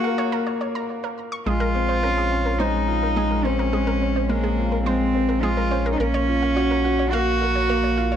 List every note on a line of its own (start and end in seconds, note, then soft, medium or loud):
0.00 1.49 A#3 loud
0.00 1.48 F4 loud
0.00 0.33 F#4 loud
0.00 1.48 F#4 medium
0.00 0.05 A#4 medium
0.00 0.12 F5 medium
0.05 0.21 A#4 medium
0.18 0.30 C#5 loud
0.32 0.40 A#4 loud
0.47 0.54 C#5 medium
0.61 0.72 C#5 medium
0.75 0.83 A#5 medium
1.04 1.08 A#4 medium
1.32 1.36 C#6 loud
1.46 5.96 A#1 medium
1.46 1.73 G#3 medium
1.46 2.60 F4 loud
1.46 1.54 G#4 medium
1.60 1.68 A#4 loud
1.75 2.01 C4 medium
1.89 2.00 C5 medium
2.03 2.30 C#4 loud
2.03 2.07 A#4 medium
2.17 2.22 G#4 medium
2.31 2.58 C#4 loud
2.46 2.53 A#4 medium
2.59 2.86 G#3 medium
2.59 3.45 D#4 loud
2.59 2.67 C5 loud
2.88 3.15 F4 medium
3.03 3.14 A#4 medium
3.16 3.43 G#3 loud
3.16 3.24 G#4 loud
3.31 3.38 A#4 medium
3.44 3.71 C4 loud
3.44 4.30 C#4 loud
3.44 3.56 C5 medium
3.59 3.63 A#4 medium
3.73 4.00 G#3 medium
3.73 3.80 G#4 medium
3.87 3.94 A#4 loud
4.01 4.28 C#4 medium
4.16 4.27 C5 medium
4.28 4.56 G#3 loud
4.28 4.84 A#3 medium
4.28 4.34 A#4 medium
4.44 4.48 G#4 medium
4.58 4.74 F4 medium
4.72 4.79 A#4 medium
4.85 5.13 G#3 loud
4.85 5.43 C4 loud
4.85 4.94 C5 loud
5.15 5.41 C4 medium
5.29 5.40 A#4 medium
5.42 5.69 G#3 loud
5.42 5.85 F4 loud
5.42 5.50 G#4 loud
5.57 5.64 A#4 medium
5.71 5.98 C#4 loud
5.71 5.82 C5 medium
5.86 5.90 A#4 medium
5.92 6.00 D#4 medium
5.99 8.16 A#1 medium
5.99 6.26 A#3 medium
5.99 7.12 C#4 loud
5.99 6.07 A#4 loud
6.14 6.21 C#5 loud
6.28 6.54 F4 medium
6.43 6.53 F5 medium
6.56 6.83 F#4 loud
6.56 6.61 C#5 medium
6.71 6.75 A#4 medium
6.84 7.11 F#4 loud
6.99 7.06 C#5 medium
7.11 7.39 A#3 loud
7.11 8.16 F#4 loud
7.11 7.20 F5 loud
7.41 7.68 A#4 medium
7.55 7.66 C#5 medium
7.69 7.96 A#3 loud
7.69 7.77 A#4 loud
7.84 7.91 C#5 medium
7.97 8.16 F4 medium
7.97 8.09 F5 medium
8.12 8.16 C#5 medium